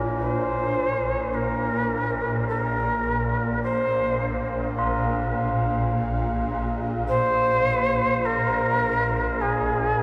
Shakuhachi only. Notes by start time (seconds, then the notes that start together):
0.19 C5
1.34 A#4
2.48 A4
2.59 A#4
3.63 C5
4.77 A#4
7.07 C5
8.25 A#4
9.41 G#4